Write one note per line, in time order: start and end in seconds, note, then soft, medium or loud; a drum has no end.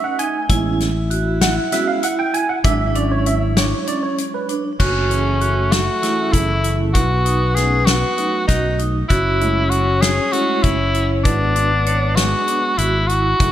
0.00 0.46 A3 medium
0.00 0.46 C#4 medium
0.00 0.46 D#4 medium
0.00 0.23 F#4 loud
0.00 0.20 F#5 medium
0.19 0.36 D#4 medium
0.19 0.77 G#5 medium
0.19 closed hi-hat medium
0.49 1.58 A1 medium
0.49 0.90 G#3 medium
0.49 0.90 B3 soft
0.49 0.91 C#4 medium
0.49 2.61 E4 loud
0.49 0.83 E4 loud
0.49 kick medium
0.49 closed hi-hat medium
0.80 snare soft
0.80 closed hi-hat medium
1.11 1.44 F#4 medium
1.11 closed hi-hat medium
1.41 1.74 F#5 loud
1.41 snare loud
1.41 closed hi-hat medium
1.72 2.00 G#3 soft
1.72 2.00 B3 soft
1.72 2.00 C#4 medium
1.72 1.89 F#4 medium
1.72 1.87 E5 loud
1.72 snare soft
1.72 closed hi-hat medium
1.88 2.04 F5 loud
2.03 2.36 E4 medium
2.03 2.19 F#5 loud
2.03 closed hi-hat medium
2.19 2.35 G5 loud
2.34 2.50 G#5 loud
2.34 closed hi-hat medium
2.49 2.56 F#5 loud
2.64 3.73 G#1 loud
2.64 4.75 F#3 medium
2.64 4.76 G#3 medium
2.64 2.81 D4 loud
2.64 4.76 D4 medium
2.64 4.45 E4 medium
2.64 2.96 E5 loud
2.64 kick loud
2.64 closed hi-hat medium
2.95 3.29 C#4 medium
2.95 3.12 D5 medium
2.95 closed hi-hat medium
3.11 3.27 C#5 medium
3.26 3.40 E5 medium
3.26 closed hi-hat medium
3.57 3.74 D4 medium
3.57 3.89 C#5 medium
3.57 snare loud
3.57 closed hi-hat medium
3.87 4.21 C#4 medium
3.87 4.02 D5 medium
3.87 closed hi-hat medium
4.03 4.35 C#5 medium
4.18 closed hi-hat medium
4.34 4.63 B4 medium
4.49 4.66 D4 medium
4.49 closed hi-hat soft
4.79 5.88 F#1 medium
4.79 6.91 A3 medium
4.79 5.74 C#4 medium
4.79 5.13 F#4 medium
4.79 kick medium
4.79 crash medium
5.09 5.53 E3 medium
5.09 5.54 A3 medium
5.09 5.54 C#4 medium
5.09 5.53 G#4 medium
5.09 closed hi-hat soft
5.41 5.75 F#4 medium
5.41 closed hi-hat soft
5.72 6.34 F#4 medium
5.72 snare loud
5.72 closed hi-hat medium
6.01 6.88 E3 medium
6.01 6.89 A3 medium
6.01 6.89 C#4 medium
6.01 6.36 E4 medium
6.01 6.89 G#4 medium
6.01 snare soft
6.01 closed hi-hat medium
6.32 6.95 F#1 medium
6.32 6.79 E4 medium
6.32 kick medium
6.32 closed hi-hat medium
6.64 6.97 E4 medium
6.64 closed hi-hat medium
6.94 8.03 B1 medium
6.94 8.79 B3 loud
6.94 7.57 F#4 medium
6.94 kick medium
6.94 closed hi-hat medium
7.26 7.42 D#4 medium
7.26 closed hi-hat medium
7.55 7.78 F#3 medium
7.55 7.78 A3 soft
7.55 7.90 C#4 medium
7.55 7.78 C#4 medium
7.55 7.79 D#4 medium
7.55 7.87 G#4 medium
7.55 snare soft
7.55 closed hi-hat medium
7.86 8.47 F#4 medium
7.86 snare loud
7.86 closed hi-hat medium
8.17 9.04 F#3 medium
8.17 9.04 A3 medium
8.17 9.04 C#4 medium
8.17 8.34 D#4 medium
8.17 9.05 F#4 medium
8.17 closed hi-hat medium
8.47 9.03 B1 medium
8.47 8.80 D#4 medium
8.47 8.65 F#4 medium
8.47 kick medium
8.47 snare soft
8.47 closed hi-hat medium
8.79 8.96 D#4 medium
8.79 closed hi-hat medium
9.09 10.18 F#1 medium
9.09 11.27 C#4 loud
9.09 9.72 E4 medium
9.09 9.43 F#4 loud
9.09 kick medium
9.09 closed hi-hat medium
9.40 9.84 G#3 medium
9.40 9.84 A3 medium
9.40 9.84 C#4 medium
9.40 9.84 E4 medium
9.40 closed hi-hat soft
9.70 10.03 F#4 medium
9.70 10.05 F#4 medium
9.70 closed hi-hat medium
10.01 10.34 G#4 medium
10.01 snare loud
10.01 closed hi-hat medium
10.32 10.76 G#3 medium
10.32 10.76 A3 medium
10.32 10.76 C#4 medium
10.32 10.66 E4 medium
10.32 10.64 F#4 medium
10.32 10.76 F#4 medium
10.32 closed hi-hat medium
10.63 11.25 F#1 medium
10.63 11.09 E4 medium
10.63 kick medium
10.63 closed hi-hat medium
10.95 11.28 E4 medium
10.95 closed hi-hat medium
11.24 12.33 G#1 medium
11.24 11.68 G#3 medium
11.24 11.68 B3 medium
11.24 13.10 B3 medium
11.24 12.17 D4 medium
11.24 11.69 D4 medium
11.24 11.69 F#4 medium
11.24 kick loud
11.24 closed hi-hat medium
11.56 11.72 D4 medium
11.56 closed hi-hat medium
11.86 12.20 C#5 medium
11.86 closed hi-hat medium
12.16 13.03 G#3 medium
12.16 13.03 B3 medium
12.16 13.04 D4 medium
12.16 12.79 F#4 medium
12.16 13.04 G#4 medium
12.16 snare medium
12.16 closed hi-hat medium
12.48 12.65 D4 medium
12.48 closed hi-hat medium
12.78 13.33 G#1 medium
12.78 13.09 E4 medium
12.78 12.96 F#4 medium
12.78 closed hi-hat medium
13.08 13.26 E4 medium
13.08 13.52 F#4 loud
13.08 closed hi-hat medium
13.39 13.52 F#1 medium
13.39 13.52 A3 medium
13.39 13.52 A3 loud
13.39 13.52 C#4 medium
13.39 13.52 E4 medium
13.39 13.52 F#4 medium
13.39 13.52 G#4 medium
13.39 kick loud
13.39 closed hi-hat medium